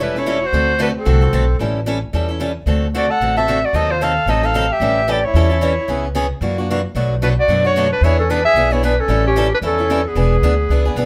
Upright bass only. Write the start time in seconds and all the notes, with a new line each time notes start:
0.00 E1
0.53 D2
1.06 C2
1.33 B1
1.59 A1
2.13 E2
2.66 D2
3.20 A1
3.73 D#2
4.26 A1
4.80 A1
5.34 E2
5.88 C#2
6.41 F#2
6.95 B1
7.48 F#2
8.01 E2
8.54 B1
9.08 A1
9.62 E2
10.15 E1
10.42 D2
10.69 C#2
10.95 B1